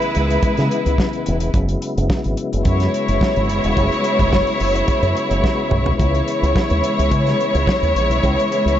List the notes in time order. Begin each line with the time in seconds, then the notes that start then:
Already playing: C#3 E3 G#3 B3 E4 B4
0.02 closed hi-hat
0.15 C#2, closed hi-hat
0.30 closed hi-hat
0.42 muted fingered electric bass stroke, kick, closed hi-hat
0.57 C#3, snare, closed hi-hat
0.71 closed hi-hat
0.86 C#2, closed hi-hat
0.98 kick, snare
1.13 closed hi-hat
1.26 E1, closed hi-hat
1.40 closed hi-hat
1.54 F#1 F#3, kick, closed hi-hat
1.69 closed hi-hat
1.82 closed hi-hat
1.97 F#1, closed hi-hat
2.10 kick, snare
2.24 G#1, closed hi-hat
2.37 closed hi-hat
2.53 F#1, closed hi-hat
2.65 F#2 G#3 E4 C#5, kick, closed hi-hat
2.80 snare, closed hi-hat
2.94 closed hi-hat
3.08 F#1, closed hi-hat
3.21 kick, snare
3.36 G#1, closed hi-hat
3.49 F#1, closed hi-hat
3.64 E1, closed hi-hat
3.77 F#1, kick, closed hi-hat
3.92 closed hi-hat
4.04 closed hi-hat
4.19 F#1, kick, closed hi-hat
4.33 kick, snare
4.47 closed hi-hat
4.60 F#1, open hi-hat
4.76 closed hi-hat
4.88 muted fingered electric bass stroke, kick, closed hi-hat
5.03 F#2, closed hi-hat
5.17 closed hi-hat
5.31 F#1, closed hi-hat
5.44 kick, snare
5.71 B1, mid tom
5.86 floor tom
5.99 C#2 E3 G#3 E4 C#5, kick, closed hi-hat
6.14 closed hi-hat
6.28 closed hi-hat
6.43 C#2, closed hi-hat
6.56 kick, snare
6.70 D#2, closed hi-hat
6.84 closed hi-hat
6.99 C#2, closed hi-hat
7.12 C#3, kick, closed hi-hat
7.27 snare, closed hi-hat
7.40 closed hi-hat
7.55 C#2, closed hi-hat
7.67 kick, snare
7.83 D#2, closed hi-hat
7.96 A#1, closed hi-hat
8.09 B1, closed hi-hat
8.24 C#2, kick, closed hi-hat
8.40 closed hi-hat
8.52 closed hi-hat
8.66 C#2, closed hi-hat